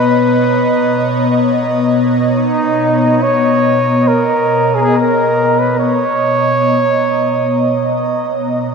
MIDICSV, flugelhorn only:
0, 0, Header, 1, 2, 480
1, 0, Start_track
1, 0, Tempo, 500000
1, 8397, End_track
2, 0, Start_track
2, 0, Title_t, "Flugelhorn"
2, 0, Program_c, 0, 56
2, 0, Note_on_c, 0, 71, 107
2, 1848, Note_off_c, 0, 71, 0
2, 2262, Note_on_c, 0, 63, 108
2, 3098, Note_on_c, 0, 73, 107
2, 3112, Note_off_c, 0, 63, 0
2, 3916, Note_on_c, 0, 70, 102
2, 3930, Note_off_c, 0, 73, 0
2, 4559, Note_on_c, 0, 68, 95
2, 4573, Note_off_c, 0, 70, 0
2, 4614, Note_on_c, 0, 70, 84
2, 4628, Note_off_c, 0, 68, 0
2, 4633, Note_on_c, 0, 68, 103
2, 4647, Note_off_c, 0, 70, 0
2, 4745, Note_on_c, 0, 70, 110
2, 4760, Note_off_c, 0, 68, 0
2, 5369, Note_on_c, 0, 71, 87
2, 5383, Note_off_c, 0, 70, 0
2, 5557, Note_off_c, 0, 71, 0
2, 5563, Note_on_c, 0, 73, 121
2, 8050, Note_off_c, 0, 73, 0
2, 8397, End_track
0, 0, End_of_file